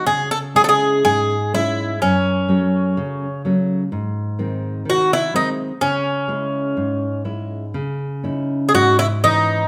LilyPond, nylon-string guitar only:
\new Staff \with { instrumentName = "Nylon-string guitar" } { \clef bass \time 2/4 \key cis \minor \tempo 4 = 62 cis8 <gis cis' e'>8 gis,8 <gis cis' e'>8 | fis,8 <fis a cis'>8 cis8 <fis a cis'>8 | gis,8 <dis gis bis>8 dis8 <dis gis bis>8 | cis8 <gis cis' e'>8 gis,8 <gis cis' e'>8 |
cis8 <cis' dis' e'>8 gis,8 <e cis' dis'>8 | }